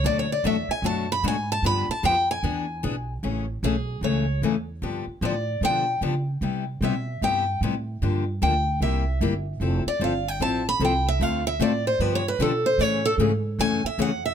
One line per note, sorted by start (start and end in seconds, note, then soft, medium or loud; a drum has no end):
0.04 0.42 D2 medium
0.04 0.25 B2 medium
0.04 0.25 F#3 medium
0.04 0.26 A3 medium
0.04 0.26 D4 medium
0.04 0.26 F#4 medium
0.04 0.18 D5 loud
0.19 0.31 C#5 medium
0.32 0.44 D5 medium
0.44 0.67 E2 medium
0.44 0.55 B2 medium
0.44 0.55 F#3 medium
0.44 0.56 A3 loud
0.44 0.56 D4 medium
0.44 0.56 F#4 medium
0.44 0.69 E5 medium
0.68 0.84 G#5 medium
0.68 muted upright bass stroke soft
0.82 1.22 F#2 medium
0.82 1.05 B2 medium
0.82 1.05 F#3 medium
0.82 1.05 A3 medium
0.82 1.06 D4 medium
0.82 1.06 F#4 medium
0.82 1.09 A5 medium
1.12 1.25 B5 loud
1.23 1.62 G#2 medium
1.23 1.35 B2 medium
1.23 1.35 F#3 medium
1.23 1.35 A3 loud
1.23 1.35 D4 medium
1.23 1.35 F#4 medium
1.28 1.50 G#5 medium
1.52 1.65 A5 loud
1.63 1.86 G2 medium
1.63 1.85 D3 medium
1.63 1.85 F3 medium
1.63 1.85 B3 medium
1.63 1.86 D4 medium
1.63 1.86 G4 medium
1.63 1.89 B5 loud
1.89 2.04 A5 medium
1.89 muted upright bass stroke soft
2.03 2.42 F2 medium
2.03 2.15 D3 medium
2.03 2.15 F3 medium
2.03 2.15 B3 loud
2.03 2.15 D4 medium
2.03 2.15 G4 loud
2.03 2.29 G5 medium
2.31 3.13 G#5 medium
2.43 2.82 E2 medium
2.43 2.65 E3 medium
2.43 2.65 B3 medium
2.43 2.65 D4 medium
2.43 2.65 G#4 medium
2.83 3.22 B1 medium
2.83 2.94 E3 medium
2.83 2.94 B3 medium
2.83 2.95 D4 medium
2.83 2.95 G#4 loud
3.23 3.61 A1 medium
3.23 3.44 C#3 medium
3.23 3.45 E3 medium
3.23 3.45 A3 medium
3.23 3.45 C#4 medium
3.23 3.45 G#4 medium
3.63 4.01 B1 medium
3.63 3.74 C#3 medium
3.63 3.75 E3 medium
3.63 3.75 A3 medium
3.63 3.75 C#4 medium
3.63 4.01 G#4 medium
3.63 3.75 G#4 medium
4.01 4.40 C#2 medium
4.01 4.24 C#3 medium
4.01 4.24 E3 medium
4.01 4.25 A3 medium
4.01 4.25 C#4 medium
4.01 4.25 G#4 medium
4.01 4.41 C#5 medium
4.42 4.81 E2 medium
4.42 4.54 C#3 medium
4.42 4.54 E3 medium
4.42 4.55 A3 medium
4.42 4.55 C#4 medium
4.42 4.55 G#4 medium
4.82 5.05 G2 medium
4.82 5.03 D3 medium
4.82 5.04 F3 medium
4.82 5.04 B3 medium
4.82 5.04 D4 medium
4.82 5.04 G4 medium
5.06 muted upright bass stroke soft
5.21 5.60 A2 medium
5.21 5.34 D3 medium
5.21 5.33 F3 medium
5.21 5.34 B3 medium
5.21 5.34 D4 loud
5.21 5.34 G4 medium
5.21 5.61 D5 medium
5.61 6.00 B2 medium
5.61 5.84 D3 medium
5.61 5.84 F3 medium
5.61 5.84 B3 medium
5.61 5.84 D4 medium
5.61 5.84 G4 medium
5.61 6.00 G5 loud
6.01 6.40 C#3 medium
6.01 6.13 D3 medium
6.01 6.13 F3 medium
6.01 6.13 B3 medium
6.01 6.14 D4 medium
6.01 6.14 G4 medium
6.41 6.80 C3 medium
6.41 6.63 C3 medium
6.41 6.63 G3 medium
6.41 6.63 B3 medium
6.41 6.64 E4 medium
6.41 6.64 G4 medium
6.81 7.20 B2 medium
6.81 6.93 C3 medium
6.81 6.93 G3 medium
6.81 6.94 B3 medium
6.81 6.94 E4 loud
6.81 6.94 G4 medium
6.81 7.20 E5 medium
7.21 7.60 G2 medium
7.21 7.43 C3 medium
7.21 7.44 G3 medium
7.21 7.44 B3 medium
7.21 7.44 E4 medium
7.21 7.44 G4 medium
7.21 7.60 G5 medium
7.61 8.00 A2 medium
7.61 7.73 C3 medium
7.61 7.73 G3 medium
7.61 7.74 B3 medium
7.61 7.74 E4 medium
7.61 7.74 G4 medium
8.02 8.40 G2 medium
8.02 8.23 D3 medium
8.02 8.23 F3 medium
8.02 8.23 A#3 medium
8.02 8.23 D4 medium
8.02 8.24 G4 medium
8.42 8.80 D2 medium
8.42 8.53 D3 medium
8.42 8.53 F3 medium
8.42 8.53 A#3 medium
8.42 8.53 D4 medium
8.42 8.53 G4 medium
8.42 8.79 G5 medium
8.80 9.19 C2 medium
8.80 9.03 C3 medium
8.80 9.03 G3 medium
8.80 9.03 A#3 medium
8.80 9.03 E4 medium
8.80 9.03 G4 medium
8.80 9.19 E5 medium
9.21 9.59 G1 medium
9.21 9.32 C3 medium
9.21 9.33 G3 medium
9.21 9.33 A#3 medium
9.21 9.33 E4 medium
9.21 9.33 G4 medium
9.60 9.83 F1 medium
9.60 9.82 F3 medium
9.60 9.83 C4 medium
9.60 9.83 E4 medium
9.60 9.83 A4 medium
9.86 10.01 D5 medium
9.86 muted upright bass stroke soft
10.00 10.39 G1 medium
10.00 10.12 F3 medium
10.00 10.12 C4 medium
10.00 10.12 E4 medium
10.00 10.12 A4 medium
10.04 10.28 F5 medium
10.28 10.41 G5 medium
10.40 10.79 A1 medium
10.40 10.62 F3 medium
10.40 10.62 C4 medium
10.40 10.62 E4 medium
10.40 10.62 A4 medium
10.40 10.66 A5 loud
10.69 10.81 B5 loud
10.80 11.18 C2 medium
10.80 10.92 F3 medium
10.80 10.92 C4 medium
10.80 10.92 E4 medium
10.80 10.92 A4 medium
10.85 11.07 G5 medium
11.08 11.22 E5 medium
11.20 11.58 D2 medium
11.20 11.42 D3 medium
11.20 11.42 A3 medium
11.20 11.42 C4 medium
11.20 11.42 F4 medium
11.20 11.42 A4 medium
11.20 11.45 F5 medium
11.47 11.60 E5 loud
11.60 11.98 A2 medium
11.60 11.71 D3 medium
11.60 11.71 A3 medium
11.60 11.71 C4 medium
11.60 11.71 F4 medium
11.60 11.72 A4 medium
11.60 11.85 D5 medium
11.87 12.00 C5 medium
11.99 12.38 G2 medium
11.99 12.21 D3 medium
11.99 12.22 F3 medium
11.99 12.22 B3 medium
11.99 12.22 D4 medium
11.99 12.22 G4 medium
11.99 12.13 B4 medium
12.15 12.27 C#5 medium
12.28 12.40 B4 medium
12.39 12.77 B2 medium
12.39 12.51 D3 loud
12.39 12.51 F3 medium
12.39 12.51 B3 medium
12.39 12.51 D4 loud
12.39 12.51 G4 medium
12.39 12.65 A4 medium
12.66 12.81 C5 medium
12.78 13.17 A2 medium
12.78 13.00 C#3 medium
12.78 13.01 E3 medium
12.78 13.01 A3 medium
12.78 13.01 C#4 medium
12.78 13.01 G#4 medium
12.78 13.04 C#5 loud
13.05 13.14 A4 medium
13.18 13.57 G#2 medium
13.18 13.31 C#3 medium
13.18 13.31 E3 loud
13.18 13.31 A3 medium
13.18 13.31 C#4 medium
13.18 13.31 G#4 medium
13.59 13.82 F#2 medium
13.59 13.80 C#3 medium
13.59 13.80 E3 medium
13.59 13.81 A3 medium
13.59 13.81 C#4 medium
13.59 13.81 G#4 medium
13.59 13.84 G#5 loud
13.84 13.99 E5 medium
13.84 muted upright bass stroke soft
13.98 14.34 F2 medium
13.98 14.10 C#3 medium
13.98 14.10 E3 medium
13.98 14.10 A3 medium
13.98 14.10 C#4 medium
13.98 14.10 G#4 loud
13.98 14.24 F#5 loud
14.26 14.34 E5 medium